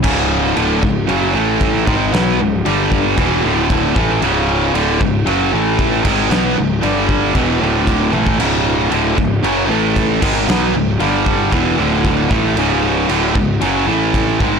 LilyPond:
<<
  \new Staff \with { instrumentName = "Distorted electric guitar" } { \clef bass \time 4/4 \key cis \minor \tempo 4 = 115 <cis, gis, cis>4 <d, a, d>8 <cis, gis,>8 <fis, cis fis>8 <a, e a>4 <gis, dis gis>8 | <b, fis b>8 <cis, gis,>8 <g, d g>4 <e, b, e>8 <d, a, d>4 <a, e a>8 | <cis, gis, cis>4 <d, a, d>8 <cis, gis,>8 <fis, cis fis>8 <a, e a>4 <gis, dis gis>8 | <b, fis b>8 <cis, gis,>8 <g, d g>4 <e, b, e>8 <d, a, d>4 <a, e a>8 |
<cis, gis, cis>4 <d, a, d>8 <cis, gis,>8 <fis, cis fis>8 <a, e a>4 <gis, dis gis>8 | <b, fis b>8 <cis, gis,>8 <g, d g>4 <e, b, e>8 <d, a, d>4 <a, e a>8 | <cis, gis, cis>4 <d, a, d>8 <cis, gis,>8 <fis, cis fis>8 <a, e a>4 <gis, dis gis>8 | }
  \new Staff \with { instrumentName = "Distorted electric guitar" } { \clef bass \time 4/4 \key cis \minor <cis, gis, cis>4 <d, a, d>8 <cis, gis,>8 <fis, cis fis>8 <a, e a>4 <gis, dis gis>8 | <b, fis b>8 <cis, gis,>8 <g, d g>4 <e, b, e>8 <d, a, d>4 <a, e a>8 | <cis, gis, cis>4 <d, a, d>8 <cis, gis,>8 <fis, cis fis>8 <a, e a>4 <gis, dis gis>8 | <b, fis b>8 <cis, gis,>8 <g, d g>4 <e, b, e>8 <d, a, d>4 <a, e a>8 |
<cis, gis, cis>4 <d, a, d>8 <cis, gis,>8 <fis, cis fis>8 <a, e a>4 <gis, dis gis>8 | <b, fis b>8 <cis, gis,>8 <g, d g>4 <e, b, e>8 <d, a, d>4 <a, e a>8 | <cis, gis, cis>4 <d, a, d>8 <cis, gis,>8 <fis, cis fis>8 <a, e a>4 <gis, dis gis>8 | }
  \new Staff \with { instrumentName = "Picked electric bass" } { \clef bass \time 4/4 \key cis \minor cis,,4 d,,8 cis,,8 fis,,8 a,,4 gis,,8 | b,,8 cis,,8 g,,4 e,,8 d,,4 a,,8 | cis,,4 d,,8 cis,,8 fis,,8 a,,4 gis,,8 | b,,8 cis,,8 g,,4 e,,8 d,,4 a,,8 |
cis,,4 d,,8 cis,,8 fis,,8 a,,4 gis,,8 | b,,8 cis,,8 g,,4 e,,8 d,,4 a,,8 | cis,,4 d,,8 cis,,8 fis,,8 a,,4 gis,,8 | }
  \new DrumStaff \with { instrumentName = "Drums" } \drummode { \time 4/4 <cymc bd>4 cymc8 bd8 cymc4 <cymc bd>8 bd8 | <cymc sn>4 cymc8 bd8 <cymc bd>4 <cymc bd>8 bd8 | cymc4 cymc8 bd8 cymc4 <cymc bd>8 <cymc bd>8 | <cymc sn>4 cymc8 bd8 <cymc bd>4 <cymc bd>8 tommh16 bd16 |
cymc4 cymc8 bd8 cymc4 <cymc bd>8 <cymc bd>8 | <cymc sn>4 cymc8 bd8 <cymc bd>4 <cymc bd>8 bd8 | cymc4 cymc8 bd8 cymc4 <cymc bd>8 bd8 | }
>>